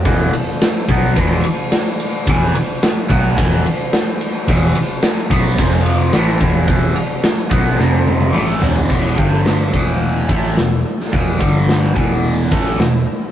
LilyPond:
<<
  \new Staff \with { instrumentName = "Overdriven electric guitar" } { \clef bass \time 4/4 \key e \minor \tempo 4 = 108 <e, b, e>8 r4 <b, fis b>8 <e, b, e>8 r4. | <e, b, e>8 r4 <b, fis b>8 <e, b, e>8 r4. | <e, b, e>8 r4 <b, fis b>8 <f, c f>4 <a, e a>8 <e, b, e>8 | <e, b, e>8 r4 <b, fis b>8 <f, c f>4 <a, e a>8 <e, b, e>8 |
<e, b, e>8 <g, d g>4 <e, b, e>4 <a, e a>8 <e, b,>8 r8 | <e, b, e>8 <g, d g>4 <e, b, e>4 <a, e a>8 <e, b,>8 r8 | }
  \new Staff \with { instrumentName = "Picked electric bass" } { \clef bass \time 4/4 \key e \minor e,,8 r4 b,,8 e,,8 r4. | e,,8 r4 b,,8 e,,8 r4. | e,,8 r4 b,,8 f,,4 a,,8 e,,8 | e,,8 r4 b,,8 f,,4 a,,8 e,,8 |
e,,8 g,,4 e,,4 a,,8 e,,8 r8 | e,,8 g,,4 e,,4 a,,8 e,,8 r8 | }
  \new DrumStaff \with { instrumentName = "Drums" } \drummode { \time 4/4 <bd cymr>8 cymr8 <cymr sn>8 <bd cymr>8 <bd cymr>8 cymr8 <cymr sn>8 cymr8 | <bd cymr>8 cymr8 <cymr sn>8 <bd cymr>8 <bd cymr>8 cymr8 <cymr sn>8 cymr8 | <bd cymr>8 cymr8 <cymr sn>8 <bd cymr sn>8 <bd cymr>8 cymr8 <cymr sn>8 <bd cymr>8 | <bd cymr>8 cymr8 <cymr sn>8 <bd cymr>8 sn8 tommh16 tommh16 toml8 tomfh16 tomfh16 |
<cymc bd>8 bd8 <hho sn>8 bd8 hho8 bd16 sn16 <hho sn>8. sn16 | <hho bd>8 bd8 <hho sn>8 bd8 hho8 bd8 <hho sn>4 | }
>>